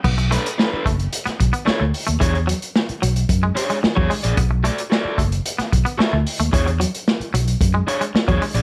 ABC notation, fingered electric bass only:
X:1
M:4/4
L:1/16
Q:1/4=111
K:Bdor
V:1 name="Fingered electric bass" clef=bass
B,,,3 z3 F,,,2 z2 B,,, z2 D,, z ^D,, | E,,3 z3 B,,,2 F,,2 z3 E,, z ^A,,, | B,,,3 z3 F,,,2 z2 B,,, z2 D,, z ^D,, | E,,3 z3 B,,,2 F,,2 z3 E,, z ^A,,, |]